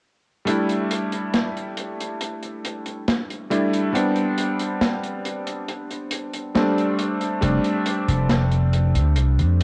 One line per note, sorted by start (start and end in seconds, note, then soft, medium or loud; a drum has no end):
0.45 3.45 G3 medium
0.45 3.46 A3 medium
0.45 3.46 D4 medium
0.45 3.47 E4 medium
0.45 closed hi-hat medium
0.69 closed hi-hat soft
0.91 closed hi-hat medium
1.12 closed hi-hat medium
1.34 snare loud
1.34 closed hi-hat medium
1.57 closed hi-hat soft
1.77 closed hi-hat medium
2.00 closed hi-hat medium
2.21 closed hi-hat medium
2.43 closed hi-hat soft
2.65 closed hi-hat medium
2.86 closed hi-hat medium
3.08 snare loud
3.08 closed hi-hat medium
3.30 closed hi-hat soft
3.50 3.89 G3 medium
3.50 3.89 A3 medium
3.50 3.89 D4 medium
3.50 3.90 E4 medium
3.50 closed hi-hat medium
3.73 closed hi-hat medium
3.93 6.49 G3 medium
3.93 6.50 B3 medium
3.93 6.50 C4 medium
3.93 6.51 D4 medium
3.93 closed hi-hat medium
4.16 closed hi-hat soft
4.38 closed hi-hat medium
4.59 closed hi-hat medium
4.81 snare loud
4.81 closed hi-hat medium
5.04 closed hi-hat medium
5.25 closed hi-hat medium
5.47 closed hi-hat medium
5.68 closed hi-hat medium
5.91 closed hi-hat medium
6.11 closed hi-hat medium
6.34 closed hi-hat medium
6.55 7.37 G3 medium
6.55 7.37 A3 medium
6.55 7.37 C4 medium
6.55 7.38 D4 medium
6.55 snare loud
6.55 closed hi-hat medium
6.78 closed hi-hat soft
6.99 closed hi-hat medium
7.21 closed hi-hat medium
7.41 7.58 F1 medium
7.41 9.63 G3 medium
7.41 9.63 A3 medium
7.41 9.63 C4 medium
7.41 9.63 D4 medium
7.41 closed hi-hat medium
7.64 closed hi-hat soft
7.86 closed hi-hat medium
8.08 8.96 F1 loud
8.08 closed hi-hat medium
8.29 snare loud
8.29 closed hi-hat medium
8.51 closed hi-hat soft
8.73 closed hi-hat medium
8.95 9.16 D2 medium
8.95 closed hi-hat medium
9.16 9.40 C2 medium
9.16 closed hi-hat medium
9.38 9.63 F2 medium
9.38 closed hi-hat soft